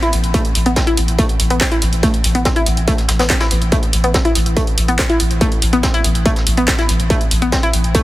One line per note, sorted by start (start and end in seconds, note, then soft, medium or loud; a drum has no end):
0.02 0.08 E4 loud
0.02 snare soft
0.02 closed hi-hat medium
0.12 0.23 A1 loud
0.12 closed hi-hat medium
0.12 open hi-hat loud
0.24 0.34 A1 medium
0.24 closed hi-hat medium
0.34 0.38 A3 loud
0.34 kick loud
0.34 closed hi-hat medium
0.45 closed hi-hat medium
0.55 0.65 A1 loud
0.55 closed hi-hat medium
0.55 open hi-hat loud
0.66 0.76 A1 medium
0.66 0.70 B3 medium
0.66 closed hi-hat medium
0.76 0.80 C4 medium
0.76 kick loud
0.76 snare loud
0.76 closed hi-hat medium
0.87 0.93 E4 loud
0.87 closed hi-hat medium
0.97 1.08 A1 loud
0.97 closed hi-hat medium
0.97 open hi-hat loud
1.08 1.18 A1 medium
1.08 closed hi-hat medium
1.19 1.23 A3 loud
1.19 kick loud
1.19 closed hi-hat medium
1.29 closed hi-hat medium
1.40 1.50 A1 medium
1.40 closed hi-hat medium
1.40 open hi-hat loud
1.50 1.61 A1 medium
1.50 1.54 B3 medium
1.50 closed hi-hat medium
1.60 1.65 C4 medium
1.60 kick loud
1.60 snare loud
1.60 clap loud
1.60 closed hi-hat medium
1.71 1.77 E4 loud
1.71 closed hi-hat soft
1.71 closed hi-hat medium
1.82 1.92 A1 loud
1.82 closed hi-hat medium
1.82 open hi-hat loud
1.93 2.03 A1 medium
1.93 closed hi-hat medium
2.03 2.07 A3 loud
2.03 kick loud
2.03 closed hi-hat medium
2.14 closed hi-hat medium
2.24 2.34 A1 loud
2.24 closed hi-hat medium
2.24 open hi-hat loud
2.35 2.45 A1 medium
2.35 2.39 B3 medium
2.35 closed hi-hat medium
2.45 2.49 C4 medium
2.45 kick loud
2.45 snare loud
2.45 closed hi-hat medium
2.56 2.62 E4 loud
2.56 closed hi-hat medium
2.66 2.77 A1 loud
2.66 closed hi-hat medium
2.66 open hi-hat loud
2.77 2.87 A1 medium
2.77 closed hi-hat medium
2.88 2.92 A3 loud
2.88 kick loud
2.88 closed hi-hat medium
2.88 closed hi-hat loud
2.98 snare soft
2.98 closed hi-hat medium
3.08 3.19 A1 loud
3.08 snare loud
3.08 closed hi-hat medium
3.08 open hi-hat loud
3.19 3.30 A1 medium
3.19 3.23 B3 medium
3.19 snare loud
3.19 closed hi-hat medium
3.30 3.34 C4 medium
3.30 kick loud
3.30 snare loud
3.30 clap loud
3.30 closed hi-hat medium
3.30 closed hi-hat loud
3.40 3.46 E4 loud
3.40 snare loud
3.40 closed hi-hat medium
3.51 3.61 A1 loud
3.51 closed hi-hat medium
3.51 open hi-hat loud
3.62 3.72 A1 medium
3.62 closed hi-hat medium
3.72 3.76 A3 loud
3.72 kick loud
3.72 closed hi-hat medium
3.83 closed hi-hat medium
3.93 4.03 A1 loud
3.93 closed hi-hat medium
3.93 open hi-hat loud
4.04 4.14 A1 medium
4.04 4.08 B3 medium
4.04 closed hi-hat medium
4.14 4.18 C4 medium
4.14 kick loud
4.14 snare loud
4.14 closed hi-hat medium
4.25 4.31 E4 loud
4.25 closed hi-hat soft
4.35 4.46 A1 loud
4.35 closed hi-hat medium
4.35 open hi-hat loud
4.46 4.56 A1 medium
4.46 closed hi-hat medium
4.57 4.61 A3 loud
4.57 kick loud
4.57 closed hi-hat medium
4.67 closed hi-hat soft
4.77 4.88 A1 loud
4.77 closed hi-hat medium
4.77 open hi-hat loud
4.88 4.99 A1 medium
4.88 4.92 B3 medium
4.88 closed hi-hat medium
4.99 5.03 C4 medium
4.99 kick loud
4.99 snare loud
4.99 clap loud
4.99 closed hi-hat medium
5.09 5.15 E4 loud
5.09 closed hi-hat soft
5.20 5.30 A1 loud
5.20 closed hi-hat medium
5.20 open hi-hat loud
5.31 5.41 A1 medium
5.31 closed hi-hat medium
5.41 5.45 A3 loud
5.41 kick loud
5.41 closed hi-hat medium
5.52 closed hi-hat medium
5.62 5.72 A1 medium
5.62 closed hi-hat medium
5.62 open hi-hat loud
5.73 5.83 A1 medium
5.73 5.77 B3 medium
5.73 closed hi-hat medium
5.83 5.87 C4 medium
5.83 kick loud
5.83 snare loud
5.83 closed hi-hat medium
5.94 6.00 E4 loud
5.94 closed hi-hat soft
6.04 6.15 A1 loud
6.04 closed hi-hat medium
6.04 open hi-hat loud
6.15 6.25 A1 medium
6.15 closed hi-hat medium
6.25 6.30 A3 loud
6.25 kick loud
6.25 closed hi-hat medium
6.36 snare soft
6.36 closed hi-hat soft
6.46 6.57 A1 loud
6.46 closed hi-hat medium
6.46 open hi-hat loud
6.57 6.68 A1 medium
6.57 6.61 B3 medium
6.57 closed hi-hat medium
6.68 6.72 C4 medium
6.68 kick loud
6.68 snare loud
6.68 clap loud
6.68 closed hi-hat medium
6.79 6.84 E4 loud
6.79 snare soft
6.79 closed hi-hat medium
6.89 6.99 A1 loud
6.89 closed hi-hat medium
6.89 open hi-hat loud
7.00 7.10 A1 medium
7.00 closed hi-hat medium
7.10 7.14 A3 loud
7.10 kick loud
7.10 closed hi-hat medium
7.21 closed hi-hat soft
7.31 7.41 A1 loud
7.31 closed hi-hat medium
7.31 open hi-hat loud
7.42 7.52 A1 medium
7.42 7.46 B3 medium
7.42 closed hi-hat medium
7.52 7.56 C4 medium
7.52 kick loud
7.52 snare loud
7.52 closed hi-hat medium
7.63 7.69 E4 loud
7.63 closed hi-hat soft
7.73 7.84 A1 loud
7.73 closed hi-hat medium
7.73 open hi-hat loud
7.84 7.94 A1 medium
7.84 closed hi-hat soft
7.95 7.99 A3 loud
7.95 kick loud
7.95 closed hi-hat medium